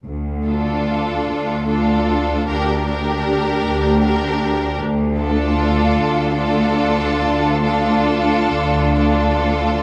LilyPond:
<<
  \new Staff \with { instrumentName = "Violin section" } { \time 6/8 \key d \minor \tempo 4. = 49 r8 a'4. a'4 | bes'8 bes'4. bes'4 | r8 a'4. a'4~ | a'8 a'4. a'4 | }
  \new Staff \with { instrumentName = "Violin section" } { \time 6/8 \key d \minor r8 f'4. f'4 | g'8 g'4. g'4 | r8 f'4. f'4~ | f'8 f'4. f'4 | }
  \new Staff \with { instrumentName = "Viola section" } { \time 6/8 \key d \minor r8 d'4. d'4 | d'8 d'4. d'4 | r8 d'4. d'4~ | d'8 d'4. d'4 | }
  \new Staff \with { instrumentName = "Cello section" } { \clef bass \time 6/8 \key d \minor d,4. d,4. | d,4. d,4. | d,4. d,4. | d,4. d,4. | }
  \new Staff \with { instrumentName = "Double bass section" } { \clef bass \time 6/8 \key d \minor d,4. d,4. | d,4. d,4. | d,4. d,4. | d,4. d,4. | }
>>